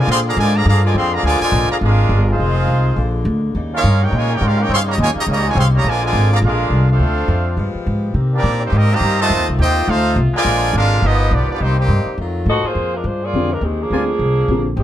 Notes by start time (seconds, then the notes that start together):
Already playing: D3 G#3 A#3 F4
0.07 A#2 C4 F5
0.12 G#4 D5 C6
0.27 D3 F3 A#3 G#4 D5 F5 A#5
0.37 G#2 D3 F3 G#3 F4 A#4 D5 G#5
0.55 D3 F3 A#3 G#4 D5 F5 A#5
0.66 G2 D3 F3 A#3 G#4 D5 F5 A#5
0.83 D3 F3 G#3 F4 A#4 D5 G#5
0.94 F2 C4 G#4 D5 F5 C6
1.13 D3 F3 A#3 G#4 D5 F5 A#5
1.23 D2 D3 F3 G#3 F4 A#4 D5 G#5
1.41 D3 F3 G#3 F4 A#4 D5 G#5, muted upright bass stroke
1.52 A#1
1.70 D3 F3 A#3 G#4 D5 F5 A#5, muted upright bass stroke
1.81 G#1 G#3 D4 F4 G#4 A#4 F5
2.09 G1
2.29 G#3 C4 D#4 F4 G#4 C5 F5
2.39 F1 D#3 C4
2.68 C2
2.96 A#1 D3 A#3
3.25 D2
3.55 D#2 C#3 G3 A#3 D#4
3.73 A#3 C#4 D#4 F4 A#4 C#5 F5
3.84 G2
4.02 A#3 C#4 D#4 G4 A#4 C#5 G5
4.12 A#2 G#3
4.16 F4 A#4 C#5 G#5
4.30 A#3 C#4 G4
4.34 D#4 A#4 C#5 G5
4.41 G#2 F4
4.46 C#4 G4 A#4 F5
4.60 A#3 C#4 D#4 G4 A#4 C#5 G5
4.69 G2 C4
4.73 G#4 C#5 F5 C6
4.87 C#3 G3 A#3 C#5 A#5
4.91 G4 D#5
4.98 D#2 G#3
5.02 F4 A#4 C#5 G#5
5.15 C#3 G3 A#3 G4, muted upright bass stroke
5.19 C#5 D#5 A#5
5.27 C#2 C#3 G3 A#3
5.31 G4 C#5 D#5 A#5
5.44 G#3
5.49 F4 A#4 C#5 G#5
5.55 C2 C4 C#5 F5
5.59 G#4 C6
5.74 C#3 G3 A#3 G4 C#5 D#5 A#5
5.84 A#1 D3 F3 G#3 F4
5.88 F4 A#4 D5 G#5
6.02 D3 F3 G#3 F4 A#4 D5 G#5
6.13 G#1
6.31 D3 F3 A#3 G#4 D5 F5 A#5
6.42 A#1 G#3 D4 F4 A#4 F5
6.46 D4 G#4
6.70 C2
6.89 A3 C4 D4 F4 A4 C5 F5
6.99 D2 D3 A3 C4 F4
7.28 F2
7.57 G2 F3 G#3 B3 G4
7.75 muted upright bass stroke
7.86 G#2
8.14 C3 D#3 A#3 C4
8.34 G3 A#3 C4 D4 G4 A#4 D5
8.43 A#2
8.63 D#3 G3 A#3 C4 D#4 G4 C5
8.72 G#2 G3 A#3 D#4
8.76 C4 G4 A#4 D#5
8.91 D#3 G3 A#3 G4 C5 D#5 A#5
9.00 G2
9.20 C3 D#3 A3 F4 C5 D#5 A5
9.30 F2 A3 F4
9.39 D#2
9.49 C2
9.59 D#2 C4 D#4 F4 G4 C5 D#5 G5
9.88 D2 A3 C4 D#4 F4 A4 C5 F5
10.16 C2
10.33 D3 F3 G#3 F4 A#4 D5 G#5, muted upright bass stroke
10.45 A#1 D3 G#3 A#3
10.73 G#1 G#3 D4 F4 G#4 A#4 F5
11.02 G1 D#3 F3 G3 B3 D#4 F4 G4 D#5
11.31 B1 F3 B3 D4 F4 G4 D5
11.49 F3 B3 D4 F4 G4 D5, muted upright bass stroke
11.60 C2 C3 D#3 G3 A#3 C4 D#4 G4 C5
11.78 D#3 G3 A#3 C4 D#4 G4 C5
11.88 G2
12.06 muted upright bass stroke
12.18 F2 D#3 F#3 A3 F4
12.46 A2 C4 F#4 A4 D#5
12.63 A#3 F4 G#4 C5, muted upright bass stroke
12.75 F2
12.95 G#3 D4 F4 A#4
13.04 G2 G#3 D4 F4 C5
13.23 A#3 F4 G#4 D5
13.34 F2 D3 G3 C4 F4
13.51 G#3 D4 F4 A#4
13.61 D#2 D#3 G#3 C4 G4
13.81 F3 A#3 D4 G#4
13.90 D2 D3 G3 C4 F4 A#4 D5 G#5
14.19 C2
14.48 A#1 D3 G3 C4 F4
14.77 G#1 D#3 G#3 C4 G4